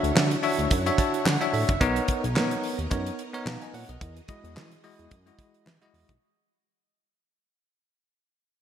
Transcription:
Already playing: string machine D3 E4 F#4 C#5, tine electric piano D4 F#4 C#5 E5
0.03 analog synth bass D2, closed hi-hat
0.15 analog synth bass D3, snare, clap
0.31 closed hi-hat
0.43 tine electric piano D4 F#4 C#5 E5, open hi-hat
0.59 analog synth bass D2, closed hi-hat
0.71 analog synth bass F#2, kick, closed hi-hat
0.86 tine electric piano D4 F#4 C#5 E5, closed hi-hat
0.98 tine electric piano A5, kick, closed hi-hat
1.14 closed hi-hat
1.26 analog synth bass D3, tine electric piano F#5, snare, clap
1.41 tine electric piano D4 F#4 C#5 E5, closed hi-hat
1.53 analog synth bass A2, tine electric piano E5, open hi-hat
1.69 analog synth bass F#1, kick, closed hi-hat
1.81 analog synth bass B1, tine electric piano B3 D#4 A#4 C#5, string machine B3 D#4 A#4, kick, closed hi-hat
1.96 closed hi-hat
2.08 kick, closed hi-hat
2.24 analog synth bass B1, closed hi-hat
2.35 analog synth bass B2, tine electric piano B3 D#4 A#4 C#5, snare, clap
2.51 closed hi-hat
2.63 open hi-hat
2.79 analog synth bass D#2, closed hi-hat
2.90 analog synth bass F#2, tine electric piano B3 D#4 A#4 C#5, kick, closed hi-hat
3.06 closed hi-hat
3.19 closed hi-hat
3.34 tine electric piano B3 D#4 A#4 C#5, closed hi-hat
3.46 analog synth bass B2, tine electric piano F5 A#5, snare, clap
3.62 tine electric piano D#5 G#5, closed hi-hat
3.74 analog synth bass A#2, tine electric piano C#5 F#5, open hi-hat
3.89 analog synth bass B1, tine electric piano A#4 D#5, closed hi-hat
4.01 analog synth bass E2, string machine E3 F#4 G#4 D#5, kick, closed hi-hat
4.16 closed hi-hat
4.28 tine electric piano G#3 E4 F#4 D#5, kick, closed hi-hat
4.44 analog synth bass E2, closed hi-hat
4.56 analog synth bass E3, snare, clap
4.71 closed hi-hat
4.84 tine electric piano G#3 E4 F#4 D#5, open hi-hat
4.99 analog synth bass E2, closed hi-hat
5.11 analog synth bass F#2, kick, closed hi-hat
5.26 tine electric piano G#3 E4 F#4 D#5, closed hi-hat
5.39 kick, closed hi-hat
5.54 closed hi-hat
5.66 analog synth bass E3, snare, clap
5.82 tine electric piano G#3 E4 F#4 D#5, closed hi-hat
5.94 analog synth bass E2, open hi-hat
6.09 analog synth bass B1, kick, closed hi-hat

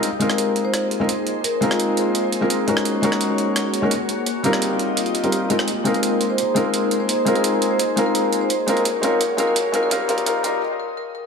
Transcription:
0.03 ambient pad A#3 D#4 G#4 C5, closed hi-hat
0.19 felt piano G#3 C4 D#4 F4 A#4, closed hi-hat
0.29 marimba A#4, cross-stick, closed hi-hat
0.38 closed hi-hat
0.56 closed hi-hat
0.65 marimba C5
0.74 cross-stick, closed hi-hat
0.91 closed hi-hat
1.00 felt piano G#3 C4 D#4 F4 A#4
1.09 closed hi-hat
1.27 closed hi-hat
1.44 marimba A#4, closed hi-hat
1.61 felt piano G#3 C4 D#4 F4 A#4, closed hi-hat
1.71 marimba F4, cross-stick, closed hi-hat
1.80 closed hi-hat
1.97 closed hi-hat
2.15 closed hi-hat
2.32 closed hi-hat
2.41 felt piano G#3 C4 D#4 F4 A#4
2.50 closed hi-hat
2.67 felt piano G#3 C#4 D#4 F#4 A#4, closed hi-hat
2.77 cross-stick
2.85 ambient pad F#4 C#5, closed hi-hat
3.02 felt piano G#3 C#4 D#4 F#4 A#4, closed hi-hat
3.12 cross-stick, closed hi-hat
3.21 closed hi-hat
3.38 closed hi-hat
3.56 cross-stick, closed hi-hat
3.74 closed hi-hat
3.82 felt piano G#3 C#4 D#4 F#4 A#4
3.91 closed hi-hat
4.09 closed hi-hat
4.26 ambient pad F4 G4 D#5, closed hi-hat
4.43 felt piano G3 C4 D#4 F4 A#4, closed hi-hat
4.53 cross-stick, closed hi-hat
4.62 closed hi-hat
4.79 closed hi-hat
4.97 closed hi-hat
5.06 closed hi-hat
5.15 closed hi-hat
5.23 felt piano G3 C4 D#4 F4 A#4, closed hi-hat
5.32 closed hi-hat
5.50 felt piano G#3 C4 D#4 F4 A#4, closed hi-hat
5.59 cross-stick
5.68 ambient pad D#4 G#4 C5, closed hi-hat
5.84 felt piano G#3 C4 D#4 F4 A#4, closed hi-hat
5.94 marimba A#4, closed hi-hat
6.03 closed hi-hat
6.21 closed hi-hat
6.30 marimba C5
6.38 closed hi-hat
6.54 felt piano G#3 C4 D#4 F4 A#4, closed hi-hat
6.65 marimba A#4
6.74 closed hi-hat
6.91 closed hi-hat
7.00 marimba C5
7.09 closed hi-hat
7.25 felt piano G#3 C4 D#4 F4 A#4, closed hi-hat
7.35 marimba A#4, closed hi-hat
7.44 closed hi-hat
7.62 closed hi-hat
7.71 marimba C5
7.79 closed hi-hat
7.96 felt piano G#3 C4 D#4 F4 A#4, closed hi-hat
8.06 marimba A#4
8.15 closed hi-hat
8.33 closed hi-hat
8.41 marimba C5
8.50 ambient pad A#3 F#4 C#5, closed hi-hat
8.67 felt piano G#3 C4 D#4 F4 A#4, closed hi-hat
8.77 marimba A#4, closed hi-hat
8.85 closed hi-hat
9.01 felt piano G#3 C4 D#4 F4 A#4, closed hi-hat
9.12 marimba A#4
9.21 closed hi-hat
9.37 felt piano G#3 C4 D#4 F4 A#4, closed hi-hat
9.47 marimba A#4
9.56 closed hi-hat
9.72 felt piano G#3 C4 D#4 F4 A#4, closed hi-hat
9.83 marimba A#4
9.90 felt piano G3 C4 D#4 F4 A#4, ambient pad F4 G4 D#5, marimba A#4, closed hi-hat
10.07 felt piano G3 C4 D#4 F4 A#4, marimba A#4, closed hi-hat
10.18 closed hi-hat
10.25 felt piano G3 C4 D#4 F4 A#4, marimba A#4, closed hi-hat
10.43 felt piano G3 C4 D#4 F4 A#4, marimba A#4, closed hi-hat
10.62 marimba A#4
10.80 marimba A#4
10.97 marimba A#4
11.15 marimba A#4

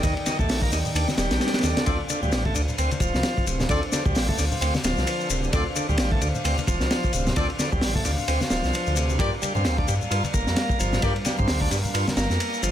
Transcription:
Already playing: string section D#3 D#4 D5 G5
0.03 detuned saw bass D#2, tonewheel organ D#3, kick, ride, shaker
0.17 ride
0.26 tonewheel organ D#3, snare, ride, high conga, shaker
0.39 detuned saw bass D#2, tonewheel organ A3, kick, low conga, shaker
0.49 detuned saw bass A#1, snare, open hi-hat, shaker
0.62 tonewheel organ A#3, kick, high conga, shaker
0.72 detuned saw bass D#2, tonewheel organ D#3, snare, ride, shaker
0.85 low conga, shaker
0.95 detuned saw bass D#2, tonewheel organ D4, ride, swell, shaker
1.08 snare, high conga, shaker
1.18 detuned saw bass D#1, tonewheel organ G3, snare, ride, shaker
1.31 detuned saw bass A#1, snare, ride, shaker
1.40 snare, ride, shaker
1.47 snare, ride
1.54 snare, ride, shaker
1.59 snare, ride
1.63 detuned saw bass D#2, tonewheel organ D3, snare, ride, shaker
1.77 snare, ride, high conga, shaker
1.86 detuned saw bass D2, tonewheel organ D3, string section D3 D4 C5 F5, horn section C4 F4 A4 D5, kick, ride, shaker
2.09 tonewheel organ D3, ride, high conga, shaker
2.22 detuned saw bass D2, tonewheel organ G3, muted conga, low conga, shaker
2.32 detuned saw bass A1, snare, ride, shaker
2.45 tonewheel organ A3, kick, high conga
2.55 detuned saw bass D2, tonewheel organ D3, ride, muted conga, shaker
2.68 low conga, shaker
2.78 detuned saw bass D2, tonewheel organ C4, ride, shaker
2.91 ride, high conga, shaker
3.00 detuned saw bass D1, tonewheel organ F3, kick, ride, shaker
3.14 detuned saw bass C2, snare, shaker
3.23 snare, ride, shaker
3.37 kick, shaker
3.46 detuned saw bass D1, tonewheel organ C3, ride, shaker
3.60 snare, high conga, low conga, shaker
3.69 detuned saw bass D2, tonewheel organ D3, horn section C4 F4 A4 D5, kick, ride, shaker
3.83 ride
3.92 tonewheel organ D3, snare, ride, high conga, shaker
4.06 detuned saw bass D2, tonewheel organ G3, kick, muted conga, low conga, shaker
4.15 detuned saw bass A1, snare, open hi-hat, shaker
4.29 tonewheel organ A3, kick, high conga
4.38 detuned saw bass D2, tonewheel organ D3, snare, ride, muted conga, shaker
4.51 muted conga, low conga, shaker
4.61 detuned saw bass D2, tonewheel organ C4, ride, shaker
4.74 snare, high conga, shaker
4.84 detuned saw bass D1, tonewheel organ F3, snare, ride, shaker
4.97 detuned saw bass C2, snare, shaker
5.07 ride, shaker
5.20 shaker
5.30 detuned saw bass D1, tonewheel organ C3, ride, shaker
5.43 high conga, shaker
5.53 detuned saw bass D2, tonewheel organ D3, horn section C4 F4 A4 D5, kick, ride, shaker
5.76 tonewheel organ D3, ride, high conga, shaker
5.89 detuned saw bass D2, tonewheel organ G3, muted conga, low conga, shaker
5.98 detuned saw bass A1, snare, ride, shaker
6.12 tonewheel organ A3, kick, high conga
6.21 detuned saw bass D2, tonewheel organ D3, ride, muted conga, shaker
6.34 low conga, shaker
6.44 detuned saw bass D2, tonewheel organ C4, ride, shaker
6.58 ride, high conga, shaker
6.67 detuned saw bass D1, tonewheel organ F3, kick, ride, shaker
6.80 detuned saw bass C2, snare, shaker
6.91 snare, ride, shaker
7.04 kick, shaker
7.13 detuned saw bass D1, tonewheel organ C3, ride, shaker
7.26 snare, high conga, low conga, shaker
7.36 detuned saw bass D2, tonewheel organ D3, horn section C4 F4 A4 D5, kick, ride, shaker
7.50 ride
7.59 tonewheel organ D3, snare, ride, high conga, shaker
7.72 detuned saw bass D2, tonewheel organ G3, kick, muted conga, low conga, shaker
7.81 detuned saw bass A1, snare, open hi-hat, shaker
7.95 tonewheel organ A3, kick, high conga
8.05 detuned saw bass D2, tonewheel organ D3, snare, ride, muted conga, shaker
8.18 muted conga, low conga, shaker
8.28 detuned saw bass D2, tonewheel organ C4, ride, shaker
8.41 snare, high conga, shaker
8.50 detuned saw bass D1, tonewheel organ F3, snare, ride, shaker
8.64 detuned saw bass C2, snare, shaker
8.73 ride, shaker
8.86 detuned saw bass D2, shaker
8.96 tonewheel organ C3, ride, shaker
9.09 high conga, shaker
9.19 detuned saw bass G2, tonewheel organ G3, string section G3 A#4, horn section A#3 F4 G4 D5, kick, ride, shaker
9.42 tonewheel organ G3, ride, high conga, shaker
9.55 detuned saw bass G2, tonewheel organ C4, muted conga, low conga, shaker
9.65 detuned saw bass D2, snare, ride, shaker
9.78 tonewheel organ D4, kick, high conga
9.88 detuned saw bass G2, tonewheel organ G3, ride, muted conga, shaker
10.01 low conga, shaker
10.10 detuned saw bass G2, tonewheel organ F4, ride, shaker
10.24 ride, high conga, shaker
10.33 detuned saw bass G1, tonewheel organ A#3, kick, ride, shaker
10.47 detuned saw bass F2, snare, shaker
10.56 snare, ride, shaker
10.69 kick, shaker
10.80 detuned saw bass G1, tonewheel organ F3, ride, shaker
10.92 snare, high conga, low conga, shaker
11.02 detuned saw bass G2, tonewheel organ G3, horn section A#3 F4 G4 D5, kick, ride, shaker
11.16 ride
11.25 tonewheel organ G3, snare, ride, high conga, shaker
11.38 detuned saw bass G2, tonewheel organ C4, kick, muted conga, low conga, shaker
11.48 detuned saw bass D2, snare, open hi-hat, shaker
11.61 tonewheel organ D4, kick, high conga
11.71 detuned saw bass G2, tonewheel organ G3, snare, ride, muted conga, shaker
11.84 muted conga, low conga, shaker
11.94 detuned saw bass G2, tonewheel organ F4, ride, shaker
12.07 snare, high conga, shaker
12.17 detuned saw bass G1, tonewheel organ A#3, snare, ride, shaker
12.30 detuned saw bass F2, snare, shaker
12.40 ride, shaker
12.53 shaker
12.63 detuned saw bass G1, tonewheel organ F3, ride, shaker

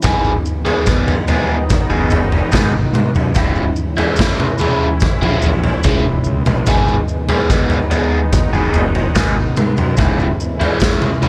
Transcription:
Already playing: analog synth pad G#3
0.02 fingered electric bass G#1, analog synth pad D#3 B3 D#4, overdriven electric guitar G#3 B3 D#4 G#4, kick, floor tom, maracas
0.24 maracas
0.45 maracas
0.65 overdriven electric guitar G#3 B3 D#4 G#4, floor tom, maracas
0.86 overdriven electric guitar G#3 B3 D#4 G#4, kick, maracas
1.08 floor tom, maracas
1.28 overdriven electric guitar G#3 B3 D#4 G#4, floor tom, maracas
1.70 kick, floor tom, maracas
1.89 fingered electric bass F#1, overdriven electric guitar G#3 B3 D#4 G#4, maracas
2.10 fingered electric bass F#1, floor tom, maracas
2.32 floor tom
2.52 fingered electric bass G#1, overdriven electric guitar G#3 B3 D#4 G#4, kick, snare, mid tom, maracas
2.74 muted overdriven electric guitar stroke
2.92 fingered electric bass G#2, mid tom, maracas
3.15 fingered electric bass F#2, floor tom, maracas
3.35 fingered electric bass C#1, overdriven electric guitar G#2 C#3 G#3 E4, analog synth pad E3 G#3 C#4 E4, kick, floor tom, maracas
3.56 maracas
3.76 maracas
3.96 overdriven electric guitar G#2 C#3 G#3 E4, floor tom, maracas
4.16 overdriven electric guitar G#2 C#3, kick, maracas
4.20 overdriven electric guitar G#3 E4, snare
4.37 mid tom, maracas
4.58 overdriven electric guitar G#2 C#3 G#3 E4, floor tom, maracas
5.00 kick, floor tom, maracas
5.21 fingered electric bass A#1, overdriven electric guitar G#2 C#3 G#3 E4, floor tom, maracas
5.42 fingered electric bass A#1, floor tom, maracas
5.64 floor tom
5.83 fingered electric bass C#1, overdriven electric guitar G#2 C#3 G#3 E4, kick, mid tom, maracas
6.05 muted overdriven electric guitar stroke
6.24 fingered electric bass C#2, maracas
6.46 fingered electric bass A#1, floor tom, mid tom, maracas
6.66 fingered electric bass G#1, analog synth pad D#3 B3 D#4, overdriven electric guitar G#3 B3 D#4 G#4, kick, floor tom, maracas
6.88 maracas
7.08 maracas
7.29 overdriven electric guitar G#3 B3 D#4 G#4, floor tom, maracas
7.50 overdriven electric guitar G#3 B3 D#4 G#4, kick, maracas
7.70 floor tom, maracas
7.91 overdriven electric guitar G#3 B3 D#4 G#4, floor tom, maracas
8.33 kick, floor tom, maracas
8.53 fingered electric bass F#1, overdriven electric guitar G#3 B3 D#4 G#4, maracas
8.74 fingered electric bass F#1, floor tom, maracas
8.95 floor tom
9.15 fingered electric bass G#1, overdriven electric guitar G#3 B3 D#4 G#4, kick, snare, mid tom, maracas
9.36 muted overdriven electric guitar stroke
9.56 fingered electric bass G#2, mid tom, maracas
9.77 fingered electric bass F#2, floor tom, maracas
9.97 fingered electric bass C#1, overdriven electric guitar G#2 C#3 G#3 E4, analog synth pad E3 C#4 E4, kick, floor tom, maracas
10.19 maracas
10.40 maracas
10.60 overdriven electric guitar G#2 C#3 G#3 E4, floor tom, maracas
10.80 overdriven electric guitar G#2 C#3 G#3 E4, kick, snare, maracas
11.02 mid tom, maracas
11.22 overdriven electric guitar G#2 C#3 G#3 E4, floor tom, maracas

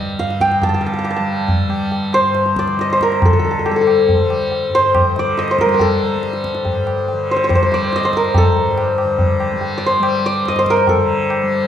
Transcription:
Already playing: tanpura G2 D3 G3, santur D#5
0.19 tanpura G2, santur F5, tabla te
0.30 tabla te
0.41 santur G5, tabla ke
0.51 tabla te
0.62 santur A5, tabla tin, tabla ge
0.69 tanpura D3, santur A5
0.74 santur A5
0.81 santur A5
0.86 santur A5
0.94 santur A5
0.99 santur A5
1.04 santur A5, tabla na
1.10 santur A5
1.16 tanpura G3, santur A5
1.48 tabla tin, tabla ge
1.69 tanpura G3, tabla na
1.92 tabla tin
2.13 santur C5, tabla na
2.19 tanpura G2
2.35 tabla te
2.46 tabla te
2.56 santur D5, tabla ke
2.67 tanpura D3, tabla te
2.79 santur D#5, tabla te
2.90 santur C5, tabla te
3.01 santur A#4, tabla ke
3.12 tabla te
3.22 tanpura D3, santur A4, tabla tin, tabla ge
3.33 santur A4
3.39 santur A4
3.44 santur A4
3.51 santur A4
3.59 santur A4
3.66 santur A4, tabla na
3.71 tanpura G3, santur A4
3.76 santur A4
3.81 santur A4
3.87 tabla na
4.09 tabla tin, tabla ge
4.20 tanpura G3
4.30 tabla na
4.52 tabla tin
4.70 tanpura G2
4.75 santur C5
4.95 tabla na, tabla ge
5.16 tanpura D3, santur D5, tabla te
5.38 santur D#5, tabla te
5.48 santur C5, tabla te
5.59 santur A#4, tabla ke
5.66 tanpura G3, tabla te
5.74 santur A#4
5.79 santur A4, tabla tin, tabla ge
6.15 tanpura G3
6.23 tabla te
6.33 tabla te
6.44 tabla ke
6.55 tabla te
6.64 tanpura G2, tabla tin, tabla ge
6.87 tabla na
7.08 tabla tin
7.13 tanpura D3
7.31 santur C5
7.36 santur C5
7.44 santur C5
7.49 santur C5, tabla na, tabla ge
7.55 santur C5
7.61 tanpura G3, santur C5
7.72 santur D5, tabla te
7.93 santur D#5, tabla te
8.03 santur C5, tabla te
8.07 tanpura G3
8.13 santur A#4, tabla ke
8.24 tabla te
8.34 santur A4, tabla tin, tabla ge
8.57 tanpura G2
8.78 tabla na
8.98 tabla na
9.05 tanpura D3
9.19 tabla tin, tabla ge
9.40 tabla na
9.53 tanpura G3
9.61 tabla tin
9.78 santur D5
9.86 santur C5
10.00 tanpura G3, tabla na
10.26 santur D5
10.45 tanpura G2, santur D#5, tabla te
10.56 santur C5, tabla te
10.66 tabla ke
10.70 santur A#4
10.77 tabla te
10.87 santur A4, tabla tin, tabla ge
10.95 tanpura D3
11.30 tabla na
11.43 tanpura G3

